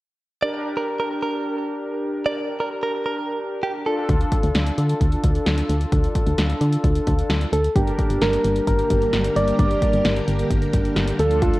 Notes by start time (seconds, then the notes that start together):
0.42 D4 G4 A#4 D5
0.77 A#4
1.00 A#4
1.23 A#4
2.26 D5
2.60 A#4
2.83 A#4
3.06 A#4
3.63 G4
3.86 D4 F4 A4
4.09 D2, kick, closed hi-hat
4.21 closed hi-hat
4.32 kick, closed hi-hat
4.43 D2, closed hi-hat
4.55 D2, snare, closed hi-hat
4.66 closed hi-hat
4.78 D3, closed hi-hat
4.89 closed hi-hat
5.01 D2, kick, closed hi-hat
5.12 closed hi-hat
5.24 D2, kick, closed hi-hat
5.35 closed hi-hat
5.46 D2, snare, closed hi-hat
5.58 closed hi-hat
5.69 D2, closed hi-hat
5.81 closed hi-hat
5.92 D2, kick, closed hi-hat
6.04 closed hi-hat
6.15 kick, closed hi-hat
6.27 D2, closed hi-hat
6.38 D2, snare, closed hi-hat
6.50 closed hi-hat
6.61 D3, closed hi-hat
6.73 closed hi-hat
6.84 D2, kick, closed hi-hat
6.95 closed hi-hat
7.07 D2, kick, closed hi-hat
7.19 closed hi-hat
7.30 D2, snare, closed hi-hat
7.41 closed hi-hat
7.53 D2 A4, closed hi-hat
7.64 closed hi-hat
7.75 G1 D3 G3 A#3 D4 G4 A#4, kick, closed hi-hat
7.87 closed hi-hat
7.99 kick, closed hi-hat
8.10 G1, closed hi-hat
8.21 G1 A#4, snare, closed hi-hat
8.33 closed hi-hat
8.44 G1, closed hi-hat
8.56 closed hi-hat
8.67 G1 A#4, kick, closed hi-hat
8.79 closed hi-hat
8.90 G1, kick, closed hi-hat
9.02 closed hi-hat
9.13 G1, snare, closed hi-hat
9.24 closed hi-hat
9.36 G1 D5, closed hi-hat
9.47 closed hi-hat
9.59 G1 D5, kick, closed hi-hat
9.71 closed hi-hat
9.82 kick, closed hi-hat
9.93 G1, closed hi-hat
10.05 G1, snare, closed hi-hat
10.16 closed hi-hat
10.28 G1, closed hi-hat
10.39 closed hi-hat
10.51 G1, kick, closed hi-hat
10.62 closed hi-hat
10.73 G1, kick, closed hi-hat
10.85 closed hi-hat
10.96 G1, snare, closed hi-hat
11.07 closed hi-hat
11.19 D2 F3 A3 D4 F4 A4, closed hi-hat
11.31 closed hi-hat
11.42 F4, kick, closed hi-hat
11.54 closed hi-hat